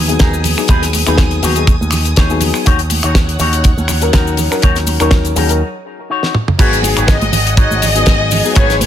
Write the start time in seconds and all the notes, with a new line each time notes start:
Already playing: D#2 B3 G#5 D#6
0.08 F#3 B3 D#4 G#4, muted clean electric guitar stroke, closed hi-hat, cabasa
0.19 D#2 D#4 G#4 A#4, kick, snare, closed hi-hat, cabasa
0.34 cabasa
0.44 open hi-hat, low conga, cabasa
0.57 F#3 B3 D#4 G#4, finger snap, cabasa
0.68 D#2 D#4 G#4 B4, kick, closed hi-hat, cabasa
0.82 snare, closed hi-hat
0.93 muted clean electric guitar stroke, open hi-hat, high conga, cabasa
1.06 D#2 F#3 B3 D#4 G#4 B4, finger snap, closed hi-hat, cabasa
1.18 kick, snare, closed hi-hat, cabasa
1.31 muted clean electric guitar stroke, closed hi-hat
1.42 D#2 F#3 B3 D#4 F#4 G#4 C#5, open hi-hat, low conga, cabasa
1.56 F#3 B3 D#4 G#4, closed hi-hat, cabasa
1.67 kick, closed hi-hat, cabasa
1.81 D#2, high conga, cabasa
1.91 finger snap, open hi-hat, low conga, cabasa
2.05 muted clean electric guitar stroke, closed hi-hat, cabasa
2.16 D#2 D#4 G#4 C#5, kick, snare, closed hi-hat, cabasa
2.29 F#3 B3 D#4 G#4, cabasa
2.41 open hi-hat, low conga, cabasa
2.54 finger snap, cabasa
2.65 D#2 D#4 F#4 C#5 F#5, kick, closed hi-hat, cabasa
2.79 closed hi-hat
2.90 muted clean electric guitar stroke, open hi-hat, high conga, cabasa
3.03 D#2 D#4 F#4 C#5, finger snap, closed hi-hat, cabasa
3.15 kick, snare, closed hi-hat, cabasa
3.28 muted clean electric guitar stroke, closed hi-hat
3.39 D#2 D#4 F#4 C#5, open hi-hat, low conga, cabasa
3.53 closed hi-hat, cabasa
3.64 kick, closed hi-hat, cabasa
3.77 D#2, high conga, cabasa
3.88 finger snap, open hi-hat, low conga, cabasa
4.01 F#3 C#4 D#4 A#4, muted clean electric guitar stroke, closed hi-hat, cabasa
4.13 D#2 D#4 F#4 A#4, kick, snare, closed hi-hat, cabasa
4.27 cabasa
4.37 open hi-hat, low conga, cabasa
4.50 F#3 C#4 D#4 A#4, finger snap, cabasa
4.62 D#2 D#4 F#4 C#5, kick, closed hi-hat, cabasa
4.76 snare, closed hi-hat, cabasa
4.87 muted clean electric guitar stroke, open hi-hat, high conga, cabasa
5.00 D#2 F#3 C#4 D#4 F#4 A#4 C#5, finger snap, closed hi-hat, cabasa
5.11 kick, snare, closed hi-hat, cabasa
5.25 muted clean electric guitar stroke, closed hi-hat, cabasa
5.35 D#2 F#3 C#4 D#4 F#4 G#4 A#4, open hi-hat, low conga, cabasa
5.49 F#3 C#4 D#4 A#4, closed hi-hat, cabasa
5.98 muted clean electric guitar stroke
6.10 D#4 F#4 C#5
6.23 snare
6.35 mid tom
6.48 mid tom
6.58 G#1 F#3 B3 D#4 F#4 G#4 B4 F#5 G#5, kick, closed hi-hat, crash, cabasa
6.73 closed hi-hat, cabasa
6.83 G#4, open hi-hat, muted conga, high conga, cabasa
6.97 G#1 D#4 F#4 G#4 B4, finger snap, closed hi-hat, cabasa
7.08 D#5, kick, snare, closed hi-hat, cabasa
7.21 closed hi-hat, muted conga
7.32 G#1, muted clean electric guitar stroke, open hi-hat, low conga, cabasa
7.47 closed hi-hat, cabasa
7.57 D#4 F#4 G#4 C#5 D#5, kick, closed hi-hat, cabasa
7.71 G#1, muted conga, high conga, cabasa
7.82 open hi-hat, low conga, cabasa
7.95 F#3 B3 D#4 G#4, closed hi-hat, cabasa
8.06 G#1, kick, snare, closed hi-hat, muted conga, cabasa
8.19 muted clean electric guitar stroke
8.31 muted clean electric guitar stroke, open hi-hat, low conga, cabasa
8.44 F#3 B3 D#4 G#4, cabasa
8.55 G#1 D#4 F#4 G#4 B4 C#5 F5, kick, closed hi-hat, muted conga, cabasa
8.70 snare, closed hi-hat, cabasa
8.80 B4, open hi-hat, high conga, cabasa